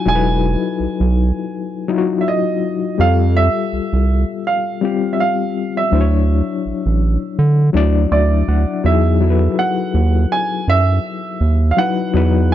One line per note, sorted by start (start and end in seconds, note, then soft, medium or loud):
0.00 0.05 F#3 medium
0.00 0.06 D#4 medium
0.00 0.08 E4 medium
0.00 1.92 F4 medium
0.00 1.98 F#4 medium
0.05 0.56 E1 medium
0.05 1.17 F#3 medium
0.05 1.18 D#4 medium
0.05 1.18 E4 medium
0.05 0.14 A4 medium
0.05 2.16 G#5 loud
0.15 1.22 B4 medium
0.80 0.88 B1 soft
1.00 1.32 B1 medium
1.88 2.73 F#3 medium
1.88 2.74 D#4 medium
1.88 2.74 E4 medium
1.88 1.97 F4 medium
1.98 2.78 F#4 medium
2.21 2.26 E5 medium
2.28 2.96 D#5 medium
2.98 3.49 F2 loud
2.98 4.10 G3 medium
2.98 4.11 F4 medium
2.98 4.10 G4 medium
2.98 4.11 A4 medium
2.98 3.37 F5 medium
3.37 4.41 E5 medium
3.73 3.81 C2 soft
3.93 4.25 C2 medium
4.47 5.15 F5 medium
4.81 5.66 G3 medium
4.81 5.67 C4 medium
4.81 5.67 F4 medium
4.81 5.68 G4 medium
5.13 5.18 E5 medium
5.20 5.72 F5 medium
5.77 8.08 E5 medium
5.91 6.42 D2 loud
5.91 7.03 F#3 medium
5.91 7.03 D4 medium
5.91 7.04 E4 medium
5.91 6.00 C5 medium
6.01 7.08 C#5 medium
6.66 6.73 A1 soft
6.86 7.17 A1 medium
7.39 7.70 D3 medium
7.73 8.06 D2 medium
7.73 8.58 F#3 medium
7.73 8.59 D4 medium
7.73 8.59 E4 medium
7.73 8.60 D5 loud
8.11 8.43 D2 medium
8.11 8.80 D5 medium
8.11 8.45 E5 medium
8.48 8.66 D2 medium
8.48 8.82 F#5 medium
8.84 9.48 E2 loud
8.84 9.12 F#3 medium
8.84 9.13 D#4 medium
8.84 9.13 E4 medium
8.84 9.14 G#4 medium
8.84 9.60 E5 medium
9.20 10.32 F#3 medium
9.20 10.33 E4 medium
9.20 10.33 F#4 medium
9.20 9.29 A4 medium
9.30 10.37 B4 medium
9.59 10.33 F#5 medium
9.94 10.26 D#2 medium
10.32 10.69 G#5 medium
10.68 10.99 F#2 medium
10.68 11.75 E5 medium
11.41 11.72 D#2 medium
11.71 11.77 F5 medium
11.77 12.05 F#3 medium
11.77 12.06 D#4 medium
11.77 12.06 E4 medium
11.77 12.07 B4 medium
11.77 12.53 F#5 medium
12.13 12.55 E2 medium
12.13 12.55 F#3 medium
12.13 12.55 D#4 medium
12.13 12.55 E4 medium
12.13 12.55 B4 medium